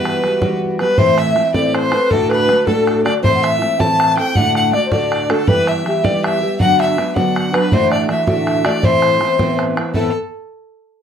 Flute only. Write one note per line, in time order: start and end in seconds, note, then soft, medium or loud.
0.00 0.57 B4 medium
0.80 1.00 B4 medium
0.98 1.17 C5 medium
1.18 1.48 E5 medium
1.50 1.56 E5 medium
1.55 1.75 D5 medium
1.74 1.94 C5 medium
1.92 2.12 B4 medium
2.10 2.31 A4 medium
2.29 2.68 B4 medium
2.66 3.04 A4 medium
3.05 3.22 D5 medium
3.22 3.34 C5 medium
3.35 3.44 F#5 medium
3.43 3.81 E5 medium
3.80 4.19 A5 medium
4.17 4.35 G5 loud
4.36 4.54 F#5 loud
4.56 4.75 F#5 medium
4.74 4.85 D5 medium
4.86 4.94 C5 medium
4.92 5.32 D5 medium
5.31 5.50 A4 medium
5.49 5.70 B4 medium
5.68 6.07 E5 medium
6.05 6.25 D5 medium
6.23 6.59 E5 medium
6.59 6.81 F#5 medium
6.80 7.17 E5 medium
7.16 7.36 F#5 medium
7.53 7.70 B4 medium
7.72 7.93 C5 medium
7.92 8.10 D5 medium
8.09 8.27 E5 medium
8.27 8.67 E5 medium
8.65 8.85 D5 medium
8.84 9.59 C5 medium
9.95 10.13 A4 medium